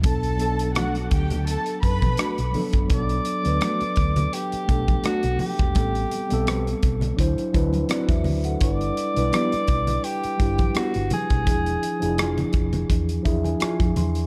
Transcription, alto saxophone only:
X:1
M:4/4
L:1/8
Q:"Swing 16ths" 1/4=84
K:Bm
V:1 name="Alto saxophone"
z8 | d4 G2 F G- | G3 z4 z | d4 G2 F ^G- |
^G3 z4 z |]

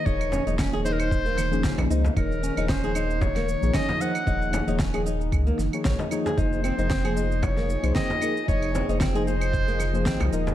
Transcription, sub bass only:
X:1
M:4/4
L:1/16
Q:"Swing 16ths" 1/4=114
K:Fphr
V:1 name="Sub bass" clef=bass
E,,,3 E,,,8- E,,, G,,, B,,, D,, z | E,,,3 E,,,8 B,,, z4 | E,,,3 E,,,4- E,,, D,, z G,,, z B,,, z3 | F,,,3 F,,,8 C,, z4 |
F,,,3 F,,,8- F,,, A,,, C,, E,,, z |]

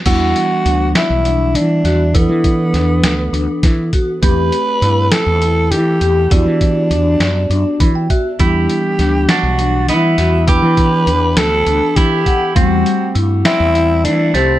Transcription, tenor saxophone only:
X:1
M:7/8
L:1/8
Q:1/4=101
K:Em
V:1 name="Tenor saxophone"
F3 E2 D2 | B,6 z | B3 A2 G2 | D6 z |
G3 F2 E2 | B3 A2 G2 | F2 z E2 D C |]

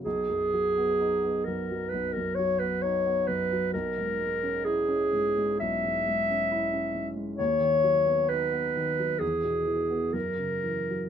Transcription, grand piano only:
X:1
M:4/4
L:1/16
Q:1/4=66
K:B
V:1 name="Grand piano" clef=bass
B,,, F,, F, B, D B, F,, F, B,,, F,, F, B, D B, F,, F, | B,,, G,, G, C E C G,, G, B,,, G,, G, C E C G,, G, | D,, D, F, B, D B, D, F, E,, B,, E, B, F,, C, E, F, |]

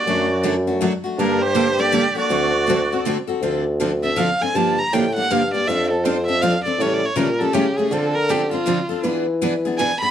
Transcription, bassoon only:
X:1
M:3/4
L:1/8
Q:"Swing" 1/4=160
K:Dphr
V:1 name="Bassoon" clef=bass
^F,,6 | G,,6 | D,,4- D,, z | [K:Dm] D,,6 |
G,,2 A,,2 G,,2 | F,,6 | A,,2 B,,2 ^C,2 | D,4- D, z |
E,6 |]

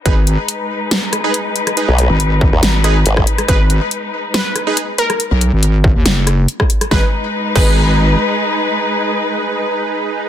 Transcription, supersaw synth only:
X:1
M:4/4
L:1/16
Q:"Swing 16ths" 1/4=140
K:G#m
V:1 name="Supersaw synth"
[DGB] z8 z2 [DGB] z4 | [DGB] z8 z [DGB] z4 z | [DGB] z8 z2 [DGB] z4 | z16 |
[DGB] z4 z [DGB]8- [DGB]2- | [DGB]16 |]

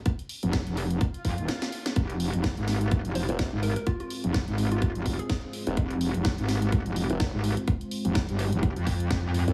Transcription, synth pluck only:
X:1
M:4/4
L:1/16
Q:"Swing 16ths" 1/4=126
K:Fm
V:1 name="Synth pluck"
z16 | z8 z2 c c z2 B B | F F z4 z F F z2 A A z3 | z16 |
z16 |]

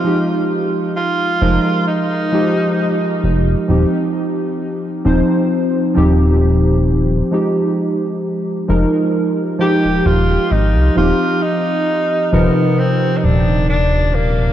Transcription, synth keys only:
X:1
M:4/4
L:1/8
Q:1/4=66
K:Ebmix
V:1 name="Synth keys"
[F,A,EG]3 [F,A,EB]2 [F,A,EG]3 | [F,CEG]3 [F,CEc]2 [F,CEG]3 | [F,A,EG]3 [F,A,EB]2 [F,A,EG]3 | [F,CEG]3 [C,F,EB]2 z3 |]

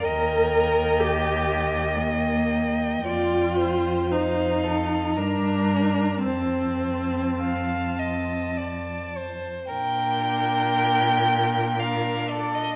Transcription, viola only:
X:1
M:3/4
L:1/8
Q:1/4=57
K:Bb
V:1 name="Viola"
B2 G2 B,2 | F2 E2 D2 | C4 z2 | D4 D2 |]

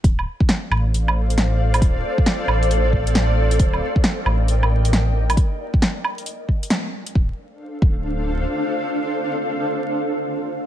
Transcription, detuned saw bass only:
X:1
M:4/4
L:1/8
Q:"Swing 16ths" 1/4=135
K:Dphr
V:1 name="Detuned saw bass" clef=bass
D,,, z2 A,,,4- A,,, | D,,, z2 A,,,4- A,,, | D,,, z2 A,,,4- A,,, | z8 |
D,,, z2 D,,,3 z2 | z8 |]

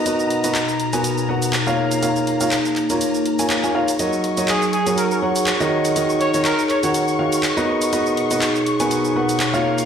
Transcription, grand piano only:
X:1
M:4/4
L:1/16
Q:"Swing 16ths" 1/4=122
K:Blyd
V:1 name="Grand piano"
[B,FABd]3 [B,FABd] z3 [B,FABg]3 [B,FABf]2 z [A,EAce]3 | [A,EAce]3 [A,EAce] z3 [A,EAca]3 z [A,EAcg]2 [A,EAcg] [EAce] z | [F,FAcd]3 [F,FAcd] z3 [F,FAcg]3 [F,FAcf]2 z [D,FAcd]3 | [D,FAcd]3 [D,FAcd] z3 [D,FAcf]3 [D,FAce]2 z [B,FABd]3 |
[B,FABd]3 [B,FABd] z3 [B,FABg]3 [B,FABf]2 z [A,EAce]3 |]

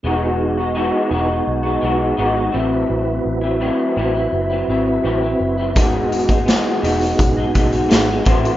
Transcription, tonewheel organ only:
X:1
M:4/4
L:1/8
Q:1/4=84
K:E
V:1 name="Tonewheel organ"
[B,DFG]6- [B,DFG] [=CEFB]- | [=CEFB]8 | [B,DFG]6- [B,DFG] [=CEFB] |]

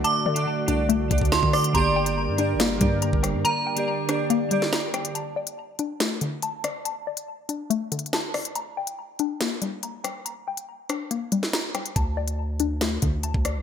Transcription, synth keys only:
X:1
M:4/4
L:1/16
Q:1/4=141
K:Gm
V:1 name="Synth keys"
[D,A,^Fd] z2 [D,A,Fd]3 [D,A,Fd]3 z [D,A,Fd]4- [D,A,Fd] z | [D,B,Gd]3 [D,B,Gd]3 [D,B,Gd]3 z [D,B,Gd]6- | [D,B,Gd] z2 [D,B,Gd]3 [D,B,Gd]3 z [D,B,Gd]4- [D,B,Gd] z | z16 |
z16 | z16 | z16 | z16 |]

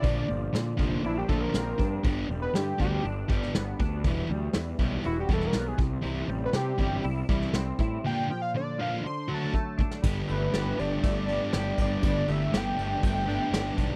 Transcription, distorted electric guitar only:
X:1
M:4/4
L:1/8
Q:1/4=120
K:G
V:1 name="Distorted electric guitar"
[D,_B,D=F] z2 [D,B,DF] z [D,B,DF] z2 | [G,B,DG] z2 [G,B,DG] z [G,B,DG] z2 | [E,G,B,E] z2 [E,G,B,E] z [E,G,B,E] z2 | [E,G,CE] z2 [E,G,CE] z [E,G,CE] z2 |
[D,_B,D=F] z2 [D,B,DF] z [D,A,D^F] z2 | [G,,D,G,B,DG] [G,B,DG] [G,,D,G,B,DG] [G,B,DG]2 [G,B,DG] [G,B,DG]2 | [G,,D,G,B,DG] [G,B,DG] [G,,D,G,B,DG] [G,B,DG]2 [G,B,DG] [G,B,DG]2 |]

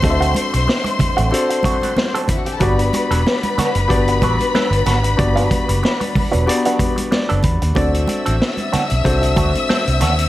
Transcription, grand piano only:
X:1
M:4/4
L:1/8
Q:"Swing 16ths" 1/4=93
K:G
V:1 name="Grand piano"
[CDFA_e=e]2 z2 [CDFAc]2 z2 | [B,DFGd]2 z2 [B,DFGd]2 z2 | [B,DFGd]2 z2 [B,DFGd]2 d b | [CDFAd]2 z2 [CDFAc]2 z2 |]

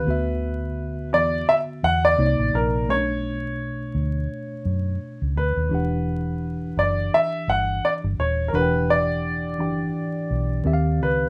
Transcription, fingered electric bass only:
X:1
M:4/4
L:1/16
Q:"Swing 16ths" 1/4=85
K:Edor
V:1 name="Fingered electric bass" clef=bass
D,,6 E,,2 z2 E,,2 =C,, A,,, _B,,,2 | B,,,6 D,,2 z2 F,,2 z C,, D,, ^D,, | E,,,6 F,,,2 z2 G,,,2 z G,,, ^D,,,2 | E,,,6 F,,,2 z2 B,,,2 ^D,,2 C,,2 |]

